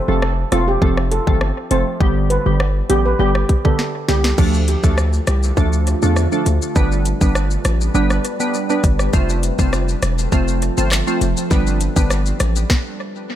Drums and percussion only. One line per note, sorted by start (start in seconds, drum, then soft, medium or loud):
0.22 cross-stick loud
0.52 cross-stick medium
0.52 closed hi-hat medium
0.82 kick medium
0.97 cross-stick medium
1.12 closed hi-hat medium
1.27 kick medium
1.41 cross-stick medium
1.71 closed hi-hat medium
2.00 kick loud
2.30 closed hi-hat medium
2.60 cross-stick loud
2.90 closed hi-hat medium
3.35 cross-stick medium
3.49 kick medium
3.49 closed hi-hat medium
3.65 kick medium
3.79 snare medium
4.09 snare medium
4.09 closed hi-hat medium
4.24 snare medium
4.38 kick loud
4.38 crash medium
4.38 shaker medium
4.54 shaker medium
4.68 closed hi-hat medium
4.68 shaker medium
4.84 kick medium
4.84 shaker medium
4.98 cross-stick loud
4.98 shaker medium
5.13 shaker medium
5.27 cross-stick loud
5.27 closed hi-hat medium
5.27 shaker medium
5.43 shaker medium
5.57 kick medium
5.57 shaker medium
5.73 shaker medium
5.87 closed hi-hat medium
5.87 shaker soft
6.02 shaker medium
6.16 cross-stick medium
6.16 shaker medium
6.32 shaker medium
6.46 closed hi-hat medium
6.46 shaker medium
6.62 shaker medium
6.76 kick loud
6.76 shaker medium
6.92 shaker medium
7.05 closed hi-hat medium
7.05 shaker medium
7.21 kick medium
7.21 shaker medium
7.35 cross-stick loud
7.35 shaker medium
7.51 shaker medium
7.65 cross-stick loud
7.65 closed hi-hat medium
7.65 shaker medium
7.81 shaker medium
7.95 shaker medium
8.10 cross-stick medium
8.10 shaker medium
8.25 closed hi-hat medium
8.25 shaker soft
8.40 shaker medium
8.54 shaker medium
8.70 shaker medium
8.84 kick medium
8.84 closed hi-hat medium
8.84 shaker medium
8.99 cross-stick medium
8.99 shaker medium
9.13 kick loud
9.13 shaker medium
9.13 maracas medium
9.29 shaker medium
9.29 maracas medium
9.43 closed hi-hat medium
9.43 shaker medium
9.43 maracas soft
9.59 kick medium
9.59 shaker medium
9.59 maracas medium
9.73 cross-stick loud
9.73 maracas medium
9.73 shaker medium
9.88 shaker medium
9.88 maracas medium
10.02 cross-stick loud
10.02 closed hi-hat medium
10.02 shaker medium
10.02 maracas soft
10.18 maracas medium
10.18 shaker medium
10.32 kick medium
10.32 shaker medium
10.32 maracas medium
10.48 shaker medium
10.48 maracas medium
10.62 closed hi-hat medium
10.62 shaker soft
10.78 maracas medium
10.78 shaker medium
10.92 cross-stick medium
10.92 clap medium
10.92 maracas medium
10.92 shaker medium
11.07 shaker medium
11.07 maracas medium
11.21 closed hi-hat medium
11.21 shaker medium
11.21 maracas medium
11.37 maracas medium
11.37 shaker medium
11.51 kick loud
11.51 maracas medium
11.51 shaker medium
11.67 shaker medium
11.67 maracas medium
11.81 closed hi-hat medium
11.81 shaker soft
11.81 maracas medium
11.96 kick medium
11.96 maracas medium
11.96 shaker medium
12.10 cross-stick loud
12.10 maracas medium
12.10 shaker medium
12.26 shaker medium
12.26 maracas medium
12.40 cross-stick loud
12.40 closed hi-hat medium
12.40 maracas soft
12.40 shaker medium
12.56 maracas medium
12.56 shaker medium
12.70 kick loud
12.70 snare medium